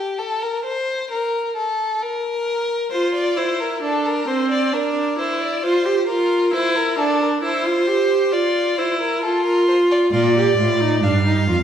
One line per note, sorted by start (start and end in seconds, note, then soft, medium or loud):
0.00 0.20 G4 medium
0.19 0.43 A4 medium
0.42 0.64 A#4 medium
0.65 1.08 C5 medium
1.11 1.55 A#4 medium
1.56 2.04 A4 medium
2.02 2.91 A#4 medium
2.91 3.38 F4 medium
2.91 3.14 C5 medium
3.15 3.40 D5 medium
3.37 3.82 E4 medium
3.37 3.61 C5 medium
3.60 3.82 A#4 medium
3.82 4.26 D4 medium
3.82 4.07 A4 medium
4.05 4.29 A#4 medium
4.27 4.74 C4 medium
4.27 4.50 C5 medium
4.51 4.75 D5 medium
4.73 5.17 D4 medium
4.73 5.20 A#4 medium
5.18 5.62 E4 medium
5.18 5.42 C5 medium
5.41 5.65 D5 medium
5.63 5.87 F4 medium
5.63 6.07 C5 medium
5.85 6.08 G4 medium
6.08 6.52 F4 medium
6.08 6.55 A#4 medium
6.53 6.97 E4 medium
6.53 6.77 C5 medium
6.76 7.00 A#4 medium
6.98 7.41 D4 medium
6.98 7.20 A4 medium
7.21 7.29 A#4 medium
7.43 7.67 E4 medium
7.43 8.34 C5 medium
7.65 7.89 F4 medium
7.87 8.34 G4 medium
8.32 8.80 F4 medium
8.32 8.79 D5 medium
8.78 9.23 E4 medium
8.78 9.00 C5 medium
9.00 9.25 A#4 medium
9.23 10.11 F4 loud
9.23 9.45 A4 medium
9.45 9.67 A#4 medium
9.68 9.76 C5 medium
9.91 9.99 D5 medium
10.12 10.54 A#2 medium
10.12 10.35 F4 medium
10.12 11.05 D5 medium
10.36 10.58 G4 medium
10.58 11.04 A2 medium
10.58 10.82 F4 medium
10.81 11.02 D#4 medium
11.02 11.49 G2 medium
11.02 11.24 D4 medium
11.02 11.63 F5 medium
11.26 11.47 D#4 medium
11.47 11.63 F2 medium
11.47 11.56 F4 medium